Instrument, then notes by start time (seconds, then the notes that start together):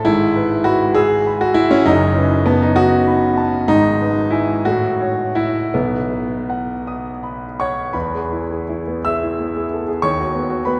grand piano
0.05 G#1 G#2 E4
0.36 B4
0.64 F#4 B5
0.95 G#4 E6
1.27 B5
1.41 F#4
1.54 E4 E5
1.71 C#4
1.86 F#1 F#2 D#4
2.17 B4
2.46 B3 A5
2.62 D#4
2.76 F#4 D#6
3.07 B5
3.37 A5
3.68 G#1 G#2 D#4
4.02 B4
4.30 E4 E5 G#5
4.65 A2 F#4
5.01 C#5
5.35 E4 E5 F#5
5.74 B1 B3
6.12 B4
6.50 F#5
6.87 D#6
7.23 B5
7.60 C#5 F#5 C#6
7.93 E2 B4 B5
8.14 G#4
8.32 E4
8.51 G#4
8.69 E4
8.88 B3
9.05 G#4 E5 E6
9.23 E4
9.40 B3
9.57 G#4
9.73 A4
9.88 G#4
10.02 D#2 C#5 C#6
10.20 F#4
10.35 B3
10.50 F#4
10.65 B3 B4 B5